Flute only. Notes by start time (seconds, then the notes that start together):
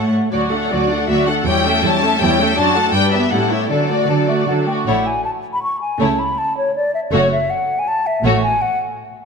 4.28 E5
4.48 F#5
4.67 G5
4.86 F#5
5.06 G#5
5.25 A5
5.53 B5
5.63 C#6
5.81 G#5
6.01 A5
6.19 B5
6.38 A5
6.58 C#5
6.76 D5
6.95 E5
7.13 C#5
7.32 E5
7.50 F#5
7.79 G#5
7.88 A5
8.07 E5
8.25 F#5
8.43 G#5
8.62 F#5